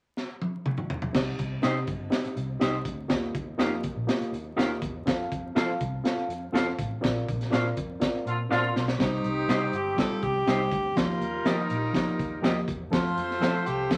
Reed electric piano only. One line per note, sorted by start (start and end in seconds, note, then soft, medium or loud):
1.13 1.40 C4 medium
1.13 1.40 D#4 medium
1.13 1.41 G4 medium
1.13 1.41 D#5 medium
1.62 1.89 C4 medium
1.62 1.90 D#4 medium
1.62 1.90 G4 medium
1.62 1.90 D#5 medium
2.10 2.38 C4 medium
2.10 2.38 D#4 medium
2.10 2.38 G4 medium
2.10 2.38 D#5 medium
2.59 2.87 C4 medium
2.59 2.87 D#4 medium
2.59 2.87 G4 medium
2.59 2.87 D#5 medium
3.08 3.36 A#3 medium
3.08 3.36 F4 medium
3.08 3.36 G4 medium
3.08 3.36 D#5 medium
3.58 3.85 A#3 medium
3.58 3.85 F4 medium
3.58 3.86 G4 medium
3.58 3.86 D#5 medium
4.07 4.34 A#3 medium
4.07 4.34 F4 medium
4.07 4.35 G4 medium
4.07 4.35 D#5 medium
4.56 4.83 A#3 medium
4.56 4.84 F4 medium
4.56 4.84 G4 medium
4.56 4.84 D#5 medium
5.05 5.33 C4 medium
5.05 5.33 F4 medium
5.05 5.33 A4 medium
5.05 5.34 F5 medium
5.55 5.82 C4 medium
5.55 5.82 F4 medium
5.55 5.82 A4 medium
5.55 5.82 F5 medium
6.04 6.31 C4 medium
6.04 6.31 F4 medium
6.04 6.31 A4 medium
6.04 6.32 F5 medium
6.53 6.80 C4 medium
6.53 6.80 F4 medium
6.53 6.80 A4 medium
6.53 6.80 F5 medium
7.01 7.29 C4 medium
7.01 7.29 F4 medium
7.01 7.29 A#4 medium
7.01 7.29 D5 medium
7.50 7.78 C4 medium
7.50 7.78 F4 medium
7.50 7.78 A#4 medium
7.50 7.78 D5 medium
8.00 8.27 C4 medium
8.00 8.27 F4 medium
8.00 8.28 A#4 medium
8.00 8.28 D5 medium
8.49 8.77 C4 medium
8.49 8.77 F4 medium
8.49 8.77 A#4 medium
8.49 8.77 D5 medium
8.98 9.26 G3 medium
8.98 9.26 C4 medium
8.98 9.26 D#4 medium
8.98 9.26 C5 medium
9.48 9.75 G3 medium
9.48 9.75 C4 medium
9.48 9.75 D#4 medium
9.48 9.76 C5 medium
9.96 10.24 G3 medium
9.96 10.24 C4 medium
9.96 10.24 D#4 medium
9.96 10.24 F4 medium
10.46 10.73 G3 medium
10.46 10.73 C4 medium
10.46 10.73 D#4 medium
10.46 10.74 C5 medium
10.96 11.22 F3 medium
10.96 11.23 A#3 medium
10.96 11.23 D#4 medium
10.96 11.23 G4 medium
11.45 11.72 F3 medium
11.45 11.72 A#3 medium
11.45 11.72 D#4 medium
11.45 11.72 G4 medium
11.93 12.20 F3 medium
11.93 12.20 A#3 medium
11.93 12.21 D#4 medium
11.93 12.21 G4 medium
12.42 12.69 F3 medium
12.42 12.69 A#3 medium
12.42 12.70 D#4 medium
12.42 12.70 G4 medium
12.91 13.18 F3 medium
12.91 13.19 A3 medium
12.91 13.19 C4 medium
12.91 13.19 A4 loud
13.40 13.68 F3 medium
13.40 13.68 A3 medium
13.40 13.68 C4 medium
13.40 13.68 A4 medium
13.90 13.97 F3 medium
13.90 13.97 A3 medium
13.90 13.97 C4 medium
13.90 13.97 A4 medium